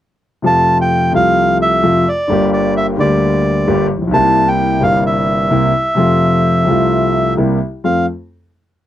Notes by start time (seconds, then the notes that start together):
0.42 F2 C3 F3 A3 F4 A5
0.81 G5
1.13 C2 C3 F3 A3 F4 F5
1.62 E5
1.83 F2 C3 F3 A3 F4
2.08 D5
2.28 G1 G2 D3 G3 A#3
2.32 G4
2.53 D5
2.77 E5
2.97 D2 D3 G3 A#3 D5
3.01 G4
3.67 G1 G2 D3 G3 A#3 G4
3.97 A1
4.01 A#1
4.07 B1
4.11 C2 C3 G3 A#3 E4 A5
4.48 G5
4.79 G1 G2 C3 G3 A#3 F5
4.83 E4
5.06 E5
5.50 C2 C3 G3 A#3 E4
5.95 F2 C3 F3 A3
5.99 F4
6.67 C2 C3 F3 A3 F4
7.37 C2 C3 G3 A#3 E4
7.84 F2 A3 C4 F4 F5